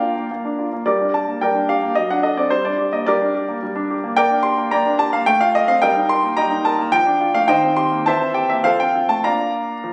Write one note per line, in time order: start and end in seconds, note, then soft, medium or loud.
0.00 0.16 A#3 soft
0.00 0.31 D4 soft
0.00 0.02 F4 soft
0.00 0.24 F4 soft
0.00 0.82 A#4 medium
0.00 0.83 D5 medium
0.00 0.86 F5 medium
0.00 0.31 G5 medium
0.16 0.30 A#3 soft
0.31 0.72 A#3 soft
0.45 0.66 D4 soft
0.59 0.80 F4 soft
0.73 0.86 A#3 soft
0.86 1.40 G3 medium
0.86 1.12 G4 medium
0.86 1.12 A#4 medium
0.86 1.13 D5 medium
1.01 1.22 D4 soft
1.14 1.36 G4 soft
1.14 1.41 A5 medium
1.28 1.50 A#3 soft
1.41 1.95 G3 soft
1.41 1.68 A#4 medium
1.41 1.67 D5 medium
1.41 1.69 G5 medium
1.55 1.77 D4 soft
1.69 1.91 G4 soft
1.69 1.96 F5 medium
1.82 1.96 A#3 soft
1.95 2.49 F#3 medium
1.95 2.09 D#5 medium
2.10 2.32 D4 soft
2.10 2.24 F#5 medium
2.23 2.45 A4 soft
2.23 2.37 D#5 medium
2.37 2.51 C4 soft
2.37 2.51 D5 medium
2.50 3.06 G3 medium
2.50 2.64 C5 medium
2.65 2.87 D4 soft
2.65 2.92 D5 medium
2.78 3.00 G4 soft
2.92 3.15 A#3 soft
2.92 3.06 D#5 medium
3.06 3.61 G3 medium
3.06 3.33 G4 medium
3.06 4.13 A#4 medium
3.06 4.16 D5 medium
3.21 3.43 D4 medium
3.35 3.56 G4 medium
3.49 3.70 A#3 soft
3.63 4.15 G3 medium
3.76 3.97 D4 medium
3.91 4.12 G4 medium
4.04 4.16 A#3 medium
4.17 4.56 A#3 medium
4.17 4.42 A#4 medium
4.17 4.42 D5 medium
4.17 4.44 G5 loud
4.30 4.52 D4 medium
4.43 4.66 G4 medium
4.43 4.71 C6 loud
4.58 4.70 A#3 medium
4.71 5.12 A#3 medium
4.71 4.98 D5 medium
4.71 4.98 G5 medium
4.71 4.99 A#5 medium
4.86 5.08 D4 medium
4.99 5.21 G4 medium
4.99 5.13 A5 loud
5.13 5.27 A#3 medium
5.13 5.27 F5 loud
5.26 5.81 A3 medium
5.26 5.41 G5 loud
5.41 5.63 F4 medium
5.41 5.55 F5 loud
5.55 5.78 A4 medium
5.55 5.69 D#5 loud
5.68 5.83 C4 medium
5.68 5.83 F5 loud
5.82 6.35 G3 medium
5.82 6.08 A#4 medium
5.82 6.09 D#5 medium
5.82 6.10 G5 loud
5.96 6.19 D#4 medium
6.09 6.32 A#4 medium
6.09 6.38 C6 loud
6.23 6.46 A#3 medium
6.37 6.92 G3 medium
6.37 6.64 D#5 medium
6.37 6.64 G5 medium
6.37 6.65 A#5 loud
6.50 6.74 D#4 medium
6.65 6.89 A#4 medium
6.65 6.94 A5 loud
6.79 6.94 A#3 medium
6.92 7.48 F3 medium
6.92 7.36 G5 loud
7.06 7.30 D4 medium
7.21 7.44 F4 medium
7.34 7.50 A3 medium
7.34 7.50 F5 loud
7.48 8.05 D#3 medium
7.48 7.76 C5 medium
7.48 7.76 D#5 medium
7.48 7.78 G5 loud
7.63 7.87 C4 medium
7.77 8.01 G4 medium
7.77 8.06 C6 loud
7.92 8.07 A#3 medium
8.06 8.63 E3 medium
8.06 8.34 C5 medium
8.06 8.34 E5 medium
8.06 8.36 A5 loud
8.21 8.44 C4 soft
8.34 8.59 G4 medium
8.34 8.50 G5 medium
8.49 8.65 A#3 medium
8.49 8.65 E5 medium
8.64 9.22 F3 medium
8.64 8.79 A4 medium
8.64 8.79 C5 medium
8.64 8.79 F5 loud
8.80 9.03 C4 medium
8.80 9.09 G5 loud
8.95 9.19 F4 medium
9.09 9.24 A3 medium
9.09 9.24 A5 loud
9.24 9.66 A#3 medium
9.24 9.73 D4 soft
9.24 9.73 F4 soft
9.24 9.93 D5 medium
9.24 9.93 F5 medium
9.24 9.93 A#5 medium
9.84 9.93 F3 medium